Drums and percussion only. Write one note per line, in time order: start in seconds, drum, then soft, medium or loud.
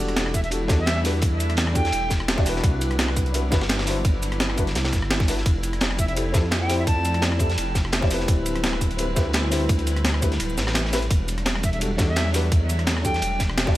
0.08 cross-stick soft
0.08 closed hi-hat soft
0.16 snare loud
0.16 closed hi-hat loud
0.16 ride medium
0.26 cross-stick soft
0.34 kick medium
0.34 closed hi-hat medium
0.34 ride medium
0.34 cabasa medium
0.44 closed hi-hat soft
0.51 closed hi-hat loud
0.51 ride medium
0.68 kick loud
0.68 snare loud
0.68 closed hi-hat medium
0.68 ride medium
0.68 cabasa medium
0.86 snare loud
0.86 closed hi-hat loud
0.86 ride medium
1.05 snare medium
1.05 open hi-hat medium
1.05 ride medium
1.05 cabasa medium
1.22 kick loud
1.22 closed hi-hat loud
1.22 ride medium
1.40 closed hi-hat medium
1.40 ride medium
1.40 cabasa medium
1.50 cross-stick soft
1.50 closed hi-hat soft
1.50 ride soft
1.57 snare loud
1.57 closed hi-hat medium
1.57 ride medium
1.67 cross-stick medium
1.75 kick medium
1.75 closed hi-hat medium
1.75 ride medium
1.75 cabasa medium
1.85 snare medium
1.85 closed hi-hat soft
1.92 closed hi-hat loud
1.92 ride loud
2.10 kick medium
2.10 snare medium
2.10 closed hi-hat medium
2.10 ride medium
2.10 cabasa medium
2.20 cross-stick medium
2.28 snare loud
2.28 closed hi-hat loud
2.28 ride medium
2.37 kick loud
2.37 snare medium
2.46 snare soft
2.46 open hi-hat medium
2.46 ride medium
2.46 cabasa medium
2.56 snare soft
2.64 kick loud
2.64 closed hi-hat medium
2.64 ride medium
2.81 closed hi-hat medium
2.81 ride medium
2.81 cabasa medium
2.91 cross-stick soft
2.91 closed hi-hat soft
2.99 snare loud
2.99 closed hi-hat medium
2.99 ride medium
3.08 cross-stick soft
3.16 kick medium
3.16 closed hi-hat medium
3.16 ride medium
3.16 cabasa medium
3.26 closed hi-hat soft
3.34 closed hi-hat medium
3.34 ride medium
3.52 kick loud
3.52 snare loud
3.52 closed hi-hat medium
3.52 ride medium
3.52 cabasa medium
3.61 snare loud
3.61 ride medium
3.69 snare loud
3.69 closed hi-hat medium
3.69 ride medium
3.79 snare loud
3.79 ride medium
3.86 snare medium
3.86 open hi-hat medium
3.86 ride medium
3.86 cabasa medium
4.05 kick loud
4.05 closed hi-hat medium
4.05 ride medium
4.22 closed hi-hat medium
4.22 ride medium
4.22 cabasa medium
4.32 cross-stick soft
4.32 closed hi-hat soft
4.32 ride soft
4.40 snare loud
4.40 closed hi-hat medium
4.40 ride medium
4.50 cross-stick soft
4.58 kick medium
4.58 closed hi-hat medium
4.58 ride medium
4.58 cabasa medium
4.67 snare soft
4.67 closed hi-hat soft
4.75 snare loud
4.75 closed hi-hat medium
4.75 ride medium
4.85 snare loud
4.85 ride medium
4.92 kick medium
4.92 snare medium
4.92 closed hi-hat medium
4.92 ride medium
4.92 cabasa medium
5.02 cross-stick soft
5.11 snare loud
5.11 closed hi-hat medium
5.11 ride medium
5.20 kick loud
5.20 snare medium
5.28 snare soft
5.28 open hi-hat medium
5.28 ride medium
5.28 cabasa medium
5.38 snare soft
5.46 kick loud
5.46 closed hi-hat medium
5.46 ride loud
5.63 closed hi-hat medium
5.63 ride medium
5.63 cabasa medium
5.73 cross-stick soft
5.73 closed hi-hat soft
5.81 snare loud
5.81 closed hi-hat medium
5.81 ride medium
5.91 cross-stick soft
5.98 kick medium
5.98 closed hi-hat medium
5.98 ride medium
5.98 cabasa medium
6.08 closed hi-hat soft
6.17 closed hi-hat loud
6.17 ride loud
6.34 kick loud
6.34 snare loud
6.34 closed hi-hat medium
6.34 ride medium
6.34 cabasa medium
6.51 snare loud
6.51 closed hi-hat medium
6.51 ride medium
6.69 snare medium
6.69 open hi-hat medium
6.69 ride medium
6.69 cabasa medium
6.87 kick loud
6.87 closed hi-hat medium
6.87 ride medium
7.05 closed hi-hat medium
7.05 ride medium
7.05 cabasa medium
7.14 cross-stick soft
7.14 closed hi-hat soft
7.14 ride soft
7.22 snare loud
7.22 closed hi-hat medium
7.22 ride medium
7.32 cross-stick soft
7.39 kick medium
7.39 closed hi-hat medium
7.39 ride medium
7.39 cabasa medium
7.50 snare medium
7.50 closed hi-hat soft
7.58 closed hi-hat loud
7.58 ride loud
7.75 kick medium
7.75 snare medium
7.75 closed hi-hat medium
7.75 ride medium
7.75 cabasa medium
7.85 cross-stick soft
7.92 snare loud
7.92 closed hi-hat loud
7.92 ride medium
8.02 kick loud
8.02 snare soft
8.11 snare medium
8.11 open hi-hat medium
8.11 ride medium
8.11 cabasa medium
8.20 snare soft
8.28 kick loud
8.28 closed hi-hat loud
8.28 ride medium
8.46 closed hi-hat medium
8.46 ride medium
8.46 cabasa medium
8.56 cross-stick soft
8.56 closed hi-hat soft
8.64 snare loud
8.64 closed hi-hat loud
8.64 ride loud
8.73 cross-stick soft
8.81 kick medium
8.81 closed hi-hat medium
8.81 cabasa medium
8.91 closed hi-hat soft
8.98 closed hi-hat loud
8.98 ride medium
9.16 kick loud
9.16 snare soft
9.16 closed hi-hat medium
9.16 ride medium
9.16 cabasa medium
9.33 snare loud
9.33 closed hi-hat loud
9.33 ride medium
9.52 snare medium
9.52 open hi-hat medium
9.52 ride medium
9.52 cabasa medium
9.69 kick loud
9.69 closed hi-hat loud
9.69 ride medium
9.79 closed hi-hat soft
9.87 closed hi-hat medium
9.87 ride medium
9.87 cabasa medium
9.96 cross-stick soft
9.96 closed hi-hat soft
9.96 ride soft
10.05 snare loud
10.05 closed hi-hat medium
10.05 ride medium
10.14 cross-stick soft
10.22 kick medium
10.22 closed hi-hat medium
10.22 ride medium
10.22 cabasa medium
10.32 snare soft
10.32 closed hi-hat soft
10.40 closed hi-hat loud
10.40 ride loud
10.49 cabasa soft
10.58 snare loud
10.58 closed hi-hat medium
10.58 ride medium
10.58 cabasa medium
10.67 cross-stick medium
10.67 snare loud
10.67 ride medium
10.74 snare loud
10.74 closed hi-hat loud
10.74 ride medium
10.85 snare medium
10.93 snare loud
10.93 open hi-hat medium
10.93 ride medium
10.93 cabasa medium
11.02 closed hi-hat soft
11.11 kick loud
11.11 closed hi-hat loud
11.11 ride medium
11.28 closed hi-hat medium
11.28 ride medium
11.28 cabasa medium
11.38 cross-stick soft
11.38 closed hi-hat soft
11.46 snare loud
11.46 closed hi-hat medium
11.46 ride medium
11.55 cross-stick medium
11.63 kick medium
11.63 closed hi-hat medium
11.63 ride medium
11.63 cabasa medium
11.73 closed hi-hat soft
11.81 closed hi-hat loud
11.81 ride loud
11.98 kick loud
11.98 snare loud
11.98 closed hi-hat medium
11.98 ride medium
11.98 cabasa medium
12.16 snare loud
12.16 closed hi-hat loud
12.16 ride medium
12.34 snare medium
12.34 open hi-hat medium
12.34 ride medium
12.34 cabasa medium
12.52 kick loud
12.52 closed hi-hat medium
12.52 ride medium
12.70 closed hi-hat medium
12.70 ride medium
12.70 cabasa medium
12.79 cross-stick soft
12.79 closed hi-hat soft
12.79 ride soft
12.87 snare loud
12.87 closed hi-hat medium
12.87 ride loud
12.97 cross-stick medium
13.05 kick medium
13.05 closed hi-hat medium
13.05 ride medium
13.05 cabasa medium
13.14 snare medium
13.14 closed hi-hat soft
13.22 closed hi-hat loud
13.22 ride medium
13.39 kick medium
13.39 snare medium
13.39 closed hi-hat medium
13.39 ride medium
13.39 cabasa medium
13.50 cross-stick medium
13.58 snare loud
13.58 closed hi-hat loud
13.58 ride loud
13.67 kick loud
13.67 snare medium